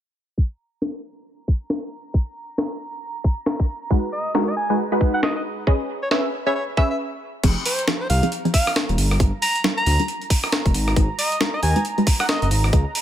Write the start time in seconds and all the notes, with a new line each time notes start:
0.38 A#5, kick
0.82 snare
1.48 kick
1.70 snare
2.14 kick
2.58 snare
3.24 kick
3.46 snare
3.60 kick
3.90 G#3 D#4 F#4 B4, kick
4.13 D#5
4.35 G#3 D#4 F#4 A#4, snare
4.48 D#5
4.57 G#5
4.70 G#3 D#4 F#4 B4
4.92 G#3 D#4 F#4 B4
5.01 kick
5.14 F#5
5.23 D#5, snare
5.36 D#5
5.67 C#4 G#4 B4 D#5, kick
6.02 C#5
6.11 C#4 G#4 B4 C#5 E5, snare
6.46 C#4 G#4 B4 C#5 E5
6.55 C#5
6.77 C#4 G#4 B4 E5, kick
6.90 E5
7.43 F1 F3 C4 D#4 G#4 A#5, kick, closed hi-hat, crash
7.66 C5, open hi-hat
7.79 closed hi-hat
7.88 F3 C4 D#4 G4, snare
8.01 C5
8.10 C2 F5, open hi-hat
8.23 F3 C4 D#4 G#4, closed hi-hat
8.32 closed hi-hat
8.45 F3 C4 D#4 G#4, closed hi-hat
8.54 F5, kick, open hi-hat
8.67 cross-stick
8.76 snare
8.89 D#1, closed hi-hat
8.98 G1, open hi-hat
9.11 cross-stick
9.20 G1 G3 D4 F4 A4, kick, closed hi-hat
9.42 A#5, open hi-hat
9.56 closed hi-hat
9.64 G3 D4 F4 A#4, snare
9.77 A#5, closed hi-hat
9.86 D2, open hi-hat
9.99 G3 D4 F4 A#4, closed hi-hat
10.08 closed hi-hat
10.22 closed hi-hat
10.30 kick, open hi-hat
10.44 cross-stick
10.52 snare
10.66 F1, kick, closed hi-hat
10.74 G#1, open hi-hat
10.88 cross-stick
10.96 G#1 G#3 D#4 F#4 B4, kick, closed hi-hat
11.19 D#5, open hi-hat
11.32 closed hi-hat
11.41 G#3 D#4 F#4 A#4, snare
11.54 D#5
11.63 D#2 G#5, open hi-hat
11.76 G#3 D#4 F#4 B4, closed hi-hat
11.85 closed hi-hat
11.98 G#3 D#4 F#4 B4, closed hi-hat
12.07 kick, open hi-hat
12.20 F#5, cross-stick
12.29 D#5, snare
12.42 F#1 D#5, closed hi-hat
12.51 G#1, open hi-hat
12.64 cross-stick
12.73 C#2 C#4 G#4 B4 D#5, kick, closed hi-hat
12.95 open hi-hat